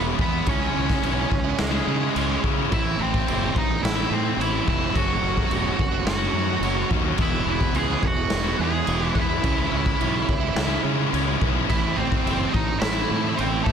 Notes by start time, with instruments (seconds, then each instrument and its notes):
Already playing: fingered electric bass E1, distorted electric guitar E3
0.05 distorted electric guitar G#3 B3 E4
0.19 fingered electric bass E2, distorted electric guitar E3 G#3 B3 E4, lead electric guitar B3 B4, kick
0.32 distorted electric guitar G#3 B3 E4
0.46 fingered electric bass C#2, distorted electric guitar C#3 G#3 C#4 E4, lead electric guitar C#5, kick, crash
0.50 lead electric guitar C#4
0.60 distorted electric guitar G#3 C#4 E4
0.73 fingered electric bass C#2, distorted electric guitar C#3 G#3 C#4 E4
0.89 kick, snare
1.02 fingered electric bass B1, distorted electric guitar C#3 G#3 C#4 E4, crash
1.16 distorted electric guitar G#3 C#4 E4
1.30 fingered electric bass C#2, muted distorted electric guitar stroke, kick
1.44 distorted electric guitar G#3 C#4 E4
1.59 fingered electric bass C#2, lead electric guitar G#3 G#4, snare, crash
1.73 distorted electric guitar G#3 C#4 E4
1.87 fingered electric bass C#3, distorted electric guitar C#3 G#3 C#4 E4
2.00 distorted electric guitar G#3 C#4 E4
2.14 fingered electric bass C#2, distorted electric guitar C#3 G#3 C#4 E4, crash
2.28 distorted electric guitar G#3 C#4 E4
2.42 distorted electric guitar C#3 G#3 C#4 E4, fingered electric bass C#3, kick
2.57 distorted electric guitar G#3 C#4 E4
2.70 fingered electric bass A1, distorted electric guitar A2 E3 A3 C4 E4, lead electric guitar E4 E5, kick, crash
2.82 distorted electric guitar A3 C4 E4
2.96 fingered electric bass A1, distorted electric guitar E3 A3 C4 E4
3.00 lead electric guitar C4 C5
3.14 kick
3.25 fingered electric bass F#1, distorted electric guitar A2 E3 A3 C4 E4, crash
3.40 distorted electric guitar A3 C4 E4
3.54 fingered electric bass A1, lead electric guitar D#4 D#5, muted distorted electric guitar stroke, kick
3.67 distorted electric guitar A3 C4 E4
3.83 fingered electric bass A1, lead electric guitar E4 E5, snare, crash
3.95 distorted electric guitar A3 C4 E4
4.09 fingered electric bass A2, distorted electric guitar E3 A3 C4 E4
4.14 lead electric guitar C4 C5
4.23 distorted electric guitar A3 C4 E4
4.37 fingered electric bass A1, distorted electric guitar A2 E3 A3 C4 E4, lead electric guitar E5
4.41 lead electric guitar E4, crash
4.51 distorted electric guitar A3 C4 E4
4.65 fingered electric bass F1, distorted electric guitar E3 A3 C4 E4, kick
4.69 lead electric guitar E4 E5
4.78 distorted electric guitar A3 C4 E4
4.93 fingered electric bass F#1, distorted electric guitar F#3 A3 C#4 F#4, lead electric guitar F#4, kick, crash
4.97 lead electric guitar F#5
5.07 distorted electric guitar A3 C#4 F#4
5.21 fingered electric bass F#1, distorted electric guitar F#3 A3 C#4 F#4
5.37 kick
5.49 fingered electric bass E1, distorted electric guitar F#3 A3 C#4 F#4, crash
5.62 distorted electric guitar A3 C#4 F#4
5.78 fingered electric bass F#1, muted distorted electric guitar stroke, kick
5.91 distorted electric guitar A3 C#4 F#4
6.04 fingered electric bass F#1, lead electric guitar F#4 F#5, snare, crash
6.20 distorted electric guitar A3 C#4 F#4
6.33 fingered electric bass F#2, distorted electric guitar F#3 A3 C#4 F#4
6.50 distorted electric guitar A3 C#4 F#4
6.60 fingered electric bass F#1, distorted electric guitar F#3 A3 C#4 F#4, crash
6.77 distorted electric guitar A3 C#4 F#4
6.90 fingered electric bass D#2, distorted electric guitar F#3 A3 C#4 F#4, kick
7.04 distorted electric guitar A3 C#4 F#4
7.18 fingered electric bass E1, distorted electric guitar E3 G#3 B3 E4, lead electric guitar E4 E5, kick, crash
7.32 distorted electric guitar G#3 B3 E4
7.46 fingered electric bass E1, distorted electric guitar E3 G#3 B3 E4, lead electric guitar E4
7.50 lead electric guitar E5
7.61 kick
7.73 fingered electric bass C#2, distorted electric guitar E3 G#3 B3 E4, lead electric guitar G#4, crash
7.78 lead electric guitar G#5
7.88 distorted electric guitar G#3 B3 E4
8.03 fingered electric bass E1, lead electric guitar F#4, muted distorted electric guitar stroke, kick
8.07 lead electric guitar F#5
8.16 distorted electric guitar G#3 B3 E4
8.30 fingered electric bass E1, snare, crash
8.44 distorted electric guitar G#3 B3 E4
8.58 fingered electric bass E2, distorted electric guitar E3 G#3 B3 E4, lead electric guitar G#4
8.64 lead electric guitar G#5
8.73 distorted electric guitar G#3 B3 E4
8.86 fingered electric bass E1, distorted electric guitar E3 G#3 B3 E4, crash
9.01 distorted electric guitar G#3 B3 E4
9.08 lead electric guitar F#5
9.14 fingered electric bass E2, distorted electric guitar E3 G#3 B3 E4, kick
9.19 lead electric guitar E4 E5
9.29 distorted electric guitar G#3 B3 E4
9.43 fingered electric bass C#2, distorted electric guitar C#3 G#3 C#4 E4, kick, crash
9.56 distorted electric guitar G#3 C#4 E4
9.70 fingered electric bass C#2, distorted electric guitar C#3 G#3 C#4 E4, lead electric guitar E4
9.76 lead electric guitar E5
9.86 kick
9.98 fingered electric bass B1, distorted electric guitar C#3 G#3 C#4 E4, crash
10.12 distorted electric guitar G#3 C#4 E4
10.27 fingered electric bass C#2, muted distorted electric guitar stroke, kick
10.40 distorted electric guitar G#3 C#4 E4
10.55 fingered electric bass C#2, snare, crash
10.69 distorted electric guitar G#3 C#4 E4
10.83 distorted electric guitar C#3 G#3 C#4 E4, fingered electric bass C#3
10.96 distorted electric guitar G#3 C#4 E4
11.11 fingered electric bass C#2, distorted electric guitar C#3 G#3 C#4 E4, crash
11.26 distorted electric guitar G#3 C#4 E4
11.40 fingered electric bass B1, distorted electric guitar C#3 G#3 C#4 E4, kick
11.54 distorted electric guitar G#3 C#4 E4
11.67 fingered electric bass A1, distorted electric guitar A2 E3 A3 C4 E4, lead electric guitar E4 E5, kick, crash
11.82 distorted electric guitar A3 C4 E4
11.96 fingered electric bass A1, distorted electric guitar E3 A3 C4 E4, lead electric guitar C4 C5
12.12 kick
12.24 fingered electric bass F#1, distorted electric guitar A2 E3 A3 C4 E4, crash
12.38 distorted electric guitar A3 C4 E4
12.53 fingered electric bass A1, lead electric guitar D#4 D#5, muted distorted electric guitar stroke, kick
12.69 distorted electric guitar A3 C4 E4
12.80 fingered electric bass A1, lead electric guitar E4 E5, snare, crash
12.96 distorted electric guitar A3 C4 E4
13.08 fingered electric bass A2, distorted electric guitar E3 A3 C4 E4
13.23 distorted electric guitar A3 C4 E4
13.37 fingered electric bass A1, distorted electric guitar A2 E3 A3 C4 E4, lead electric guitar C4 C5, crash
13.51 distorted electric guitar A3 C4 E4
13.63 fingered electric bass E1, distorted electric guitar E3 A3, lead electric guitar A3 A4, kick
13.68 distorted electric guitar C4 E4